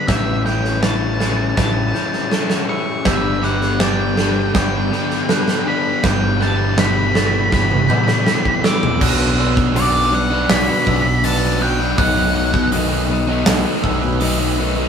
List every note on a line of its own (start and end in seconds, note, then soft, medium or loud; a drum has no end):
0.00 0.12 G3 medium
0.00 1.98 A4 medium
0.07 1.53 A1 medium
0.07 0.44 A2 medium
0.07 0.44 E3 medium
0.07 0.45 G3 medium
0.07 0.45 C#4 medium
0.07 0.45 E4 medium
0.07 0.42 E5 medium
0.07 0.44 G6 medium
0.07 kick loud
0.07 snare loud
0.45 0.80 A2 medium
0.45 0.81 E3 medium
0.45 0.83 G3 medium
0.45 0.82 C#4 medium
0.45 0.82 E4 medium
0.45 0.80 G5 medium
0.45 1.19 G6 medium
0.45 snare soft
0.65 snare soft
0.82 1.18 A2 medium
0.82 1.18 E3 medium
0.82 1.20 G3 medium
0.82 1.19 C#4 medium
0.82 1.20 E4 medium
0.82 1.57 A5 medium
0.82 snare loud
1.19 1.55 A2 medium
1.19 1.56 E3 medium
1.19 1.57 G3 medium
1.19 1.57 C#4 medium
1.19 1.57 E4 medium
1.19 1.94 A6 medium
1.19 snare medium
1.56 1.92 A1 loud
1.56 1.92 A2 medium
1.56 1.93 E3 medium
1.56 1.94 G3 medium
1.56 1.94 C#4 medium
1.56 1.94 E4 medium
1.56 2.65 A5 medium
1.56 kick loud
1.56 snare medium
1.94 2.29 A2 medium
1.94 2.30 E3 medium
1.94 2.31 G3 medium
1.94 2.31 C#4 medium
1.94 2.31 E4 medium
1.94 2.69 G6 medium
1.94 snare soft
2.13 snare soft
2.31 2.67 A2 medium
2.31 2.68 E3 medium
2.31 2.69 G3 medium
2.31 2.68 C#4 medium
2.31 2.69 E4 medium
2.31 3.06 A4 medium
2.31 snare medium
2.50 snare medium
2.68 3.03 A2 medium
2.68 3.04 E3 medium
2.68 3.05 G3 medium
2.68 3.04 C#4 medium
2.68 3.04 E4 medium
2.68 3.07 C#6 medium
2.68 3.06 E6 medium
3.05 4.51 G1 medium
3.05 3.42 G2 medium
3.05 3.41 D3 medium
3.05 3.42 G3 medium
3.05 3.43 G3 medium
3.05 3.42 B3 loud
3.05 3.43 D4 loud
3.05 3.43 G4 loud
3.05 3.45 E5 medium
3.05 3.43 G6 medium
3.05 kick loud
3.05 snare loud
3.42 3.79 G2 medium
3.42 3.79 D3 medium
3.42 3.80 G3 medium
3.42 3.80 B3 medium
3.42 3.81 D4 medium
3.42 3.81 G4 medium
3.42 3.78 F#5 medium
3.42 3.80 D6 medium
3.42 snare soft
3.61 snare soft
3.79 4.16 G2 medium
3.79 4.16 D3 medium
3.79 4.17 G3 medium
3.79 4.17 B3 medium
3.79 4.17 D4 medium
3.79 4.18 G4 medium
3.79 4.51 G5 medium
3.79 4.54 A6 medium
3.79 snare loud
4.16 4.53 G2 medium
4.16 4.53 D3 loud
4.16 4.53 G3 medium
4.16 4.54 G3 loud
4.16 4.55 B3 medium
4.16 4.55 D4 medium
4.16 4.55 G4 loud
4.16 snare medium
4.54 4.90 G1 loud
4.54 4.90 G2 medium
4.54 4.91 D3 medium
4.54 4.90 G3 medium
4.54 4.91 G3 medium
4.54 4.92 B3 medium
4.54 4.92 D4 medium
4.54 4.92 G4 medium
4.54 5.71 G5 medium
4.54 5.29 G6 medium
4.54 kick loud
4.54 snare loud
4.91 5.27 G2 medium
4.91 5.28 D3 medium
4.91 5.27 G3 medium
4.91 5.28 G3 medium
4.91 5.29 B3 medium
4.91 5.29 D4 medium
4.91 5.29 G4 medium
4.91 snare soft
5.10 snare soft
5.28 5.64 G2 medium
5.28 5.65 D3 loud
5.28 5.66 G3 medium
5.28 5.66 G3 loud
5.28 5.67 B3 loud
5.28 5.67 D4 medium
5.28 5.67 G4 loud
5.28 6.04 A4 medium
5.28 6.03 F#6 medium
5.28 snare medium
5.48 snare medium
5.65 6.01 G2 medium
5.65 6.01 D3 medium
5.65 6.02 G3 medium
5.65 6.03 B3 medium
5.65 6.04 D4 medium
5.65 6.02 G4 medium
5.65 6.05 B5 loud
6.03 7.48 G1 medium
6.03 6.39 E2 loud
6.03 7.90 G2 medium
6.03 6.39 B2 medium
6.03 6.40 E3 loud
6.03 6.39 G3 loud
6.03 6.39 B3 loud
6.03 6.40 E4 loud
6.03 6.41 G4 loud
6.03 6.42 G5 medium
6.03 6.39 G6 medium
6.03 kick loud
6.03 snare loud
6.40 6.75 E2 medium
6.40 6.76 B2 medium
6.40 8.26 D3 medium
6.40 6.77 E3 loud
6.40 6.77 G3 medium
6.40 6.77 B3 medium
6.40 6.78 E4 medium
6.40 6.78 G4 loud
6.40 6.76 A5 medium
6.40 7.15 G6 medium
6.40 snare soft
6.76 7.13 E2 medium
6.76 7.13 B2 medium
6.76 7.50 E3 medium
6.76 7.14 E3 medium
6.76 7.14 G3 medium
6.76 7.14 B3 medium
6.76 7.15 E4 medium
6.76 7.15 G4 loud
6.76 7.53 B5 medium
6.76 snare loud
7.14 7.50 E2 loud
7.14 7.50 B2 loud
7.14 7.51 E3 loud
7.14 7.51 G3 medium
7.14 7.51 B3 medium
7.14 7.52 E4 loud
7.14 7.53 G4 loud
7.14 7.89 A6 medium
7.14 snare medium
7.51 7.87 G1 loud
7.51 7.87 E2 medium
7.51 7.88 B2 medium
7.51 9.00 E3 medium
7.51 7.88 E3 medium
7.51 7.89 G3 medium
7.51 7.89 B3 medium
7.51 7.90 E4 medium
7.51 7.90 G4 medium
7.51 8.65 B5 loud
7.51 kick loud
7.51 snare medium
7.71 high tom medium
7.88 8.24 E2 medium
7.88 8.24 B2 medium
7.88 8.25 E3 loud
7.88 8.26 G3 medium
7.88 8.26 B3 loud
7.88 8.26 E4 medium
7.88 8.27 G4 loud
7.88 8.63 G6 medium
7.88 mid tom medium
8.08 snare medium
8.25 8.61 E2 loud
8.25 8.61 B2 loud
8.25 8.62 E3 loud
8.25 8.63 G3 medium
8.25 8.63 B3 loud
8.25 8.64 E4 loud
8.25 8.64 G4 loud
8.25 snare medium
8.45 kick medium
8.62 8.98 E2 medium
8.62 8.97 B2 medium
8.62 8.98 E3 medium
8.62 8.99 G3 medium
8.62 8.99 B3 medium
8.62 8.99 E4 medium
8.62 8.99 G4 loud
8.62 8.99 D6 loud
8.62 9.01 E6 medium
8.62 snare loud
8.83 floor tom medium
8.99 10.46 B1 loud
8.99 9.37 B2 medium
8.99 9.74 B2 loud
8.99 9.20 F#3 medium
8.99 9.57 F#3 medium
8.99 9.19 B3 medium
8.99 9.57 B3 loud
8.99 9.17 D4 loud
8.99 9.55 D4 loud
8.99 9.56 F#4 loud
8.99 9.38 F#6 loud
8.99 kick loud
8.99 crash loud
9.18 9.38 F#3 medium
9.18 9.38 B3 medium
9.18 9.38 D4 medium
9.37 9.74 B2 medium
9.37 9.75 F#3 medium
9.37 9.76 B3 medium
9.37 9.76 D4 medium
9.37 10.12 E6 medium
9.56 muted overdriven electric guitar stroke soft
9.56 kick loud
9.56 snare soft
9.74 11.23 B2 medium
9.74 10.12 B2 medium
9.74 10.12 F#3 loud
9.74 10.12 F#3 medium
9.74 10.12 B3 loud
9.74 10.12 B3 medium
9.74 10.12 D4 loud
9.74 10.14 F#4 loud
9.74 10.14 D5 medium
9.74 open hi-hat medium
10.12 10.68 F#3 medium
10.12 10.32 B3 medium
10.12 10.31 D4 medium
10.12 10.29 F#4 medium
10.12 10.51 F#5 loud
10.12 10.87 D6 medium
10.12 muted distorted electric guitar stroke soft
10.30 10.68 F#3 medium
10.30 10.69 B3 medium
10.30 10.70 B3 medium
10.30 10.66 D4 medium
10.30 10.68 D4 medium
10.30 10.67 F#4 medium
10.48 10.68 B1 loud
10.48 11.23 B3 medium
10.48 11.26 B5 loud
10.48 snare loud
10.48 open hi-hat medium
10.67 10.84 F#3 medium
10.67 10.87 B3 medium
10.67 10.86 D4 medium
10.67 10.87 D4 medium
10.67 10.88 F#4 medium
10.85 11.94 B1 loud
10.85 11.23 B2 medium
10.85 11.23 F#3 medium
10.85 11.06 F#3 medium
10.85 11.24 B3 medium
10.85 11.06 B3 medium
10.85 11.24 D4 medium
10.85 11.05 D4 medium
10.85 11.61 E6 medium
10.85 kick medium
10.89 11.05 F#4 medium
11.06 muted overdriven electric guitar stroke medium
11.23 11.59 B2 medium
11.23 11.97 B2 medium
11.23 11.43 F#3 medium
11.23 11.59 F#3 medium
11.23 11.43 B3 loud
11.23 11.61 B3 medium
11.23 11.40 D4 medium
11.23 11.61 D4 loud
11.23 11.62 F#4 loud
11.23 11.62 A5 loud
11.23 open hi-hat medium
11.42 11.59 F#3 medium
11.42 11.61 B3 medium
11.42 11.61 D4 medium
11.60 11.96 B2 medium
11.60 11.95 F#3 medium
11.60 11.80 F#3 medium
11.60 11.81 B3 medium
11.60 11.80 B3 medium
11.60 11.77 D4 medium
11.60 11.80 D4 medium
11.60 11.78 F#4 medium
11.60 11.96 G5 loud
11.60 11.97 F#6 medium
11.79 11.96 F#3 medium
11.79 11.98 B3 medium
11.79 11.99 B3 medium
11.79 11.95 D4 medium
11.79 11.96 D4 medium
11.79 11.96 F#4 medium
11.96 13.43 B1 medium
11.96 12.33 B2 medium
11.96 12.72 B2 loud
11.96 12.16 F#3 medium
11.96 12.54 F#3 loud
11.96 12.54 A3 loud
11.96 12.16 B3 loud
11.96 12.14 D#4 medium
11.96 12.53 D#4 loud
11.96 12.68 F#5 loud
11.96 12.72 F#6 loud
11.96 kick loud
11.96 open hi-hat medium
12.15 12.34 F#3 medium
12.15 12.35 B3 medium
12.15 12.35 D#4 medium
12.34 12.71 B2 medium
12.34 12.72 F#3 medium
12.34 12.73 B3 medium
12.34 12.73 D#4 medium
12.53 muted overdriven electric guitar stroke medium
12.53 kick loud
12.53 snare soft
12.72 13.09 B2 medium
12.72 13.10 B2 loud
12.72 13.82 D#3 medium
12.72 13.08 F#3 loud
12.72 13.10 F#3 loud
12.72 13.11 A3 loud
12.72 13.10 B3 loud
12.72 13.09 D#4 medium
12.72 13.12 D#4 loud
12.72 13.45 D#6 medium
12.72 open hi-hat medium
13.09 13.66 B2 medium
13.09 13.30 F#3 medium
13.09 13.29 A3 medium
13.09 14.88 B3 medium
13.09 muted distorted electric guitar stroke medium
13.13 13.27 D#4 medium
13.27 13.65 F#3 medium
13.27 13.66 A3 medium
13.27 13.65 B3 medium
13.27 13.63 D#4 medium
13.27 13.65 D#4 medium
13.32 13.67 F#3 medium
13.46 13.64 B1 loud
13.46 14.19 A3 medium
13.46 13.83 D#6 medium
13.46 snare loud
13.46 open hi-hat medium
13.64 13.83 F#3 medium
13.64 13.85 A3 medium
13.64 13.84 B3 medium
13.64 13.84 D#4 medium
13.64 13.86 D#4 medium
13.68 13.84 F#3 medium
13.83 14.88 B1 loud
13.83 14.18 B2 medium
13.83 14.20 B2 medium
13.83 14.56 D#3 medium
13.83 14.20 F#3 medium
13.83 14.03 F#3 medium
13.83 14.03 A3 medium
13.83 14.21 B3 medium
13.83 14.21 D#4 medium
13.83 14.21 E6 medium
13.83 kick medium
13.87 14.02 D#4 medium
14.03 muted overdriven electric guitar stroke medium
14.20 14.57 B2 loud
14.20 14.57 B2 medium
14.20 14.40 F#3 loud
14.20 14.58 F#3 medium
14.20 14.59 A3 loud
14.20 14.40 B3 loud
14.20 14.38 D#4 loud
14.20 14.60 D#4 loud
14.20 14.88 D#6 medium
14.20 open hi-hat medium
14.39 14.58 F#3 medium
14.39 14.60 B3 medium
14.39 14.59 D#4 medium
14.57 14.88 B2 medium
14.57 14.88 D#3 medium
14.57 14.78 F#3 medium
14.57 14.77 F#3 medium
14.57 14.77 A3 medium
14.57 14.77 B3 medium
14.57 14.75 D#4 medium
14.76 14.88 F#3 medium
14.76 14.88 A3 medium
14.76 14.88 B3 medium
14.76 14.88 D#4 medium